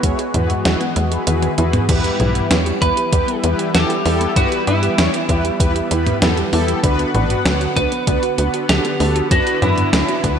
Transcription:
Already playing: analog synth pad E3 G#3 B3 F#4
0.03 analog synth bass E2, synth arpeggio sound G#3, analog polysynth E4 F#4 G#4 C#5, kick, closed hi-hat
0.19 synth arpeggio sound G#4, closed hi-hat
0.34 analog synth bass E2, analog polysynth E4 F#4 G#4 B4, synth arpeggio sound G#4, closed hi-hat, mid tom
0.49 synth arpeggio sound F#4, closed hi-hat
0.65 analog synth bass E2, synth arpeggio sound E4, analog polysynth E4 F#4 G#4 B4, snare, closed hi-hat
0.80 synth arpeggio sound B3, closed hi-hat
0.96 analog synth bass E2, synth arpeggio sound G#3, closed hi-hat
1.11 analog polysynth E4 F#4 G#4 B4, synth arpeggio sound G#4, closed hi-hat
1.27 analog synth bass E2, analog polysynth E4 F#4 G#4 B4, synth arpeggio sound G#4, closed hi-hat, high tom
1.42 synth arpeggio sound F#4, closed hi-hat, high tom
1.58 analog synth bass E2, synth arpeggio sound E4, analog polysynth E4 F#4 G#4 B4, closed hi-hat
1.73 synth arpeggio sound B3, closed hi-hat, mid tom
1.89 analog synth bass E2, analog synth pad E3 G3 B3 E4, analog polysynth B3 E4 G4 B4, synth arpeggio sound B4, kick, closed hi-hat, crash
2.04 synth arpeggio sound G4, closed hi-hat
2.20 analog synth bass B1, analog polysynth B3 E4 G4 B4, synth arpeggio sound E4, closed hi-hat, mid tom
2.35 synth arpeggio sound B3, closed hi-hat
2.51 analog synth bass E2, analog polysynth B3 E4 G4 C#5, synth arpeggio sound B4, snare, closed hi-hat
2.66 synth arpeggio sound G4, closed hi-hat
2.81 analog synth bass E2, analog polysynth B3 E4 G4 B4, synth arpeggio sound B4, lead electric guitar B4, kick, closed hi-hat
2.97 synth arpeggio sound G4, closed hi-hat
3.12 analog synth bass E2, analog polysynth B3 E4 G4 B4, synth arpeggio sound E4, kick, closed hi-hat
3.28 synth arpeggio sound B3, closed hi-hat
3.43 analog synth bass E2, analog polysynth B3 E4 G4 B4, synth arpeggio sound B4, closed hi-hat
3.59 synth arpeggio sound G4, closed hi-hat
3.74 analog synth bass E2, analog polysynth B3 E4 G4 A4, lead electric guitar G4, synth arpeggio sound B4, snare, closed hi-hat
3.90 synth arpeggio sound G4, closed hi-hat
4.05 analog synth bass E2, analog polysynth B3 E4 G4 A4, synth arpeggio sound E4, open hi-hat
4.21 synth arpeggio sound B3, closed hi-hat
4.36 analog synth bass G2, analog polysynth B3 E4 G4 B4, lead electric guitar F#4, synth arpeggio sound B4, kick, closed hi-hat
4.52 synth arpeggio sound G4, closed hi-hat
4.67 analog synth bass G2, analog polysynth B3 E4 G4 B4, lead electric guitar E4, synth arpeggio sound B4, closed hi-hat
4.83 synth arpeggio sound G4, closed hi-hat
4.98 analog synth bass E2, analog polysynth B3 E4 G4 C#5, synth arpeggio sound E4, snare, closed hi-hat
5.14 synth arpeggio sound B3, closed hi-hat
5.29 analog synth bass E2, analog polysynth B3 E4 G4 B4, synth arpeggio sound B4, kick, closed hi-hat
5.44 synth arpeggio sound G4, closed hi-hat
5.60 analog synth bass E2, analog polysynth B3 E4 G4 B4, synth arpeggio sound B4, kick, closed hi-hat
5.75 synth arpeggio sound G4, closed hi-hat
5.91 analog synth bass E2, analog polysynth B3 E4 G4 B4, synth arpeggio sound E4, closed hi-hat
6.06 synth arpeggio sound B3, closed hi-hat, mid tom
6.22 analog synth bass E2, analog polysynth B3 E4 G4 A4, synth arpeggio sound B4, snare, closed hi-hat
6.37 synth arpeggio sound G4, closed hi-hat
6.52 analog synth bass E2, analog polysynth B3 E4 G4 A4, synth arpeggio sound B4, open hi-hat
6.68 synth arpeggio sound G4, closed hi-hat
6.83 analog synth bass D2, analog synth pad D3 F#5, analog polysynth B3 D4 F#4 B4, synth arpeggio sound D4, kick, closed hi-hat
6.99 synth arpeggio sound B3, closed hi-hat
7.14 analog synth bass A1, analog polysynth B3 D4 F#4 B4, synth arpeggio sound B4, closed hi-hat, mid tom
7.30 synth arpeggio sound F#4, closed hi-hat
7.45 analog synth bass D2, analog polysynth B3 D4 F#4 C#5, synth arpeggio sound B4, snare, closed hi-hat
7.61 synth arpeggio sound F#4, closed hi-hat
7.76 analog synth bass D2, analog polysynth B3 D4 F#4 B4, synth arpeggio sound D4, lead electric guitar B4, kick, closed hi-hat
7.92 synth arpeggio sound B3, closed hi-hat
8.07 analog synth bass D2, analog polysynth B3 D4 F#4 B4, synth arpeggio sound B4, kick, closed hi-hat
8.23 synth arpeggio sound F#4, closed hi-hat
8.38 analog synth bass D2, analog polysynth B3 D4 F#4 B4, synth arpeggio sound B4, closed hi-hat
8.54 synth arpeggio sound F#4, closed hi-hat
8.69 analog synth bass D2, analog polysynth B3 D4 F#4 A4, synth arpeggio sound D4, lead electric guitar G4, snare, closed hi-hat
8.85 synth arpeggio sound B3, closed hi-hat
9.00 analog synth bass D2, analog polysynth B3 D4 F#4 A4, synth arpeggio sound B4, open hi-hat
9.16 synth arpeggio sound F#4, closed hi-hat
9.31 analog synth bass F#2, analog polysynth B3 D4 F#4 B4, analog synth pad E4, lead electric guitar F#4, synth arpeggio sound B4, kick, closed hi-hat
9.47 synth arpeggio sound F#4, closed hi-hat
9.62 analog synth bass F#2, analog polysynth B3 D4 F#4 B4, synth arpeggio sound D4, lead electric guitar E4, closed hi-hat, mid tom
9.78 synth arpeggio sound B3, closed hi-hat
9.93 analog synth bass D2, analog polysynth B3 D4 F#4 C#5, synth arpeggio sound B4, snare, closed hi-hat
10.08 synth arpeggio sound F#4, closed hi-hat
10.24 analog synth bass D2, analog polysynth B3 D4 F#4 B4, synth arpeggio sound B4, kick, closed hi-hat

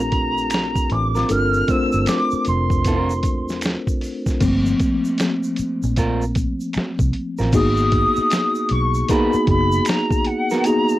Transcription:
Already playing: fingered electric bass A#1, tine electric piano A3 C4 D4 F4 G4 A4 A#4, flute A#5
0.12 kick, closed hi-hat
0.38 shaker
0.50 finger snap, closed hi-hat, shaker
0.54 snare
0.76 kick, shaker
0.90 fingered electric bass A1, flute D6, closed hi-hat
1.15 clean electric guitar C4 F4 A#4, snare, shaker
1.29 fingered electric bass G1, tine electric piano C4 D4 F4 A4 A#4, flute F6, closed hi-hat, shaker
1.54 shaker
1.68 tine electric piano A3 C4 D4 F4 C5, flute E6, kick, closed hi-hat, shaker
1.92 fingered electric bass G1, shaker
2.06 flute D6, finger snap, snare, closed hi-hat, shaker
2.31 muted fingered electric bass stroke, shaker
2.45 fingered electric bass F1, flute C6, closed hi-hat, shaker
2.70 kick, shaker
2.84 clean electric guitar B3 E4 A#4, kick, closed hi-hat, shaker
2.97 clean electric guitar C4 F4
3.10 shaker
3.23 fingered electric bass E1, kick, closed hi-hat, shaker
3.49 snare, shaker
3.61 finger snap, closed hi-hat, shaker
3.66 snare
3.87 kick, shaker
4.01 open hi-hat, shaker
4.26 kick, snare, shaker
4.40 fingered electric bass G1, tine electric piano F3 A3 A#3 C4, kick, closed hi-hat, crash, shaker
4.66 shaker
4.80 kick, closed hi-hat, shaker
5.05 shaker
5.18 finger snap, snare, closed hi-hat, shaker
5.43 shaker
5.57 muted fingered electric bass stroke, closed hi-hat, shaker
5.83 fingered electric bass A#1, shaker
5.96 clean electric guitar C4 F4 A#4, kick, closed hi-hat, shaker
6.22 shaker
6.35 kick, closed hi-hat, shaker
6.60 shaker
6.73 finger snap, muted fingered electric bass stroke, closed hi-hat, shaker
6.78 snare
6.99 fingered electric bass C2, kick, shaker
7.13 closed hi-hat
7.38 fingered electric bass A1, clean electric guitar C4 F4 A#4, snare, shaker
7.53 fingered electric bass G#1, tine electric piano A#3 B3 D#4 F#4 G#4, flute D#6, kick, closed hi-hat, crash, shaker
7.77 shaker
7.92 kick, closed hi-hat
8.16 muted fingered electric bass stroke, shaker
8.30 finger snap, snare, closed hi-hat, shaker
8.55 shaker
8.69 fingered electric bass B1, flute C#6, closed hi-hat
8.94 shaker
9.08 tine electric piano A#3 B3 D#4 F#4 G#4, clean electric guitar B3 F#4 A#4, flute B5, kick, closed hi-hat, shaker
9.33 muted fingered electric bass stroke, shaker
9.47 fingered electric bass F#1, flute B5, kick, closed hi-hat
9.72 shaker
9.85 flute A#5, finger snap, closed hi-hat, shaker
9.89 snare
10.11 kick, shaker
10.25 flute F#5, closed hi-hat
10.50 clean electric guitar B3 F#4 A#4, snare, shaker
10.64 tine electric piano A#3 B3 D#4 F#4 G#4, flute A#5, closed hi-hat, shaker
10.89 shaker

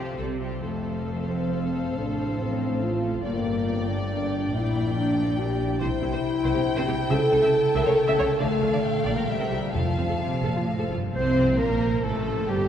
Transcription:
Already playing: cello section C3, harp C3 A3 F4, viola section F3 C4, violin section G4 C5
0.03 harp A4
0.17 double bass section C2, cello section C3, harp C3, viola section G3 C4, violin section A4
0.34 harp C4
0.41 viola section G3 C4, violin section G4
0.50 harp E4 G4
0.63 double bass section F1, cello section F2, harp F2, french horn section A3, viola section A4, violin section C5 F5
0.87 harp C4
1.09 harp A4
1.29 french horn section C4, harp C5
1.52 french horn section C4, harp A4
1.74 harp F4
1.96 double bass section A1, cello section A2, harp A2, french horn section D4
2.18 harp C4
2.39 french horn section C4, harp A4
2.61 harp C5
2.82 french horn section F4, harp A4
3.04 harp F4
3.25 double bass section G1, harp G2, cello section G2, french horn section A#3, violin section D5 G5, viola section D5
3.47 harp D4
3.68 harp A#4
3.89 french horn section D4, harp D5
4.11 french horn section D4, harp A#4
4.33 harp G4
4.54 double bass section A#1, cello section A#2, harp A#2, french horn section E4, violin section G5
4.74 harp D4
4.95 french horn section D4, harp A#4
5.17 harp D5
5.38 french horn section G4, harp A#4
5.60 harp G4
5.80 double bass section C2, cello section C3, harp C3, french horn section E4, viola section C5, violin section G5
6.02 double bass section C2, cello section C3, harp C4, viola section E4
6.12 cello section C3, viola section C5
6.23 harp G4
6.44 double bass section C2, cello section C3, viola section C5, harp C5
6.55 cello section C3, viola section G4
6.66 harp G4
6.77 cello section C3, viola section C5
6.87 double bass section C2, cello section C3, harp C4, viola section G4
7.10 double bass section C#2, cello section C#3, harp C#3, french horn section A4, viola section E5, violin section A5
7.32 double bass section C#2, cello section C#3, harp A3, viola section A4
7.42 cello section C#3, viola section E5
7.54 harp A4
7.75 double bass section C#2, cello section C#3, harp G4, french horn section A#4, viola section E5
7.86 cello section C#3, viola section C#5
7.97 french horn section A4, harp A4
8.08 cello section C#3, viola section E5
8.18 double bass section C#2, cello section C#3, harp G4, viola section C#5
8.39 double bass section D2, cello section D3, harp D3, french horn section A3, viola section D5, violin section F5
8.62 double bass section D2, cello section D3, viola section F4, harp F4 A4
8.73 cello section D3, viola section D5
8.84 harp A#2, violin section G5
9.05 double bass section A#1, cello section A#2, french horn section A#3, harp F4 A#4, viola section D5
9.17 cello section A#2, viola section A#4
9.27 harp C3, french horn section G3, violin section E5
9.40 cello section C3, viola section A#4
9.51 double bass section C2, cello section C3, harp E4 A#4, viola section G4
9.73 double bass section F1, timpani F2, cello section F2, french horn section F3, harp F3, viola section A4, violin section F5 A5
9.97 double bass section F1, cello section F2, viola section C4, harp F4
10.09 cello section F2, viola section A4
10.21 cello section C3, harp C5
10.44 double bass section F1, cello section A#2, viola section A4, harp F5
10.56 viola section F4
10.67 cello section A2, harp C5
10.79 viola section A4
10.91 double bass section F1, cello section G2, viola section F4, harp A4
10.96 harp F3
11.01 harp C4
11.05 harp F4
11.10 viola section C4, harp A4
11.14 double bass section C2, cello section C3, violin section C5, clarinet C5
11.58 double bass section A#1, cello section A#2, viola section A#3, clarinet A#4, violin section A#4
12.03 double bass section A1, cello section A2, viola section A3, violin section A4, clarinet A4
12.31 harp A2
12.35 harp C4
12.39 harp F4
12.44 violin section G4, harp A4
12.48 double bass section G1, cello section G2, viola section G3, clarinet G4

